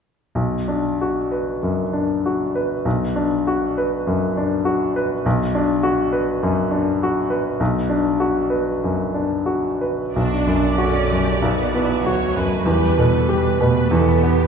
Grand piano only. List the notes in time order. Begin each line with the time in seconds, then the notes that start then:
0.35 B1
0.68 D4
1.01 F#4
1.32 B4
1.63 F#2
1.93 D4
2.26 F#4
2.55 B4
2.85 B1
3.16 D4
3.47 F#4
3.78 B4
4.07 F#2
4.37 D4
4.65 F#4
4.96 B4
5.26 B1
5.55 D4
5.83 F#4
6.13 B4
6.43 F#2
6.71 D4
7.03 F#4
7.30 B4
7.60 B1
7.89 D4
8.20 F#4
8.50 B4
8.84 F#2
9.14 D4
9.46 F#4
9.81 B4
10.16 B1
10.47 F#2
10.78 F#4
11.11 F#2
11.42 B1
11.75 B3
12.06 F#4
12.37 F#2
12.66 E2
12.98 B2
13.29 G4
13.60 B2
13.91 E2
14.23 B3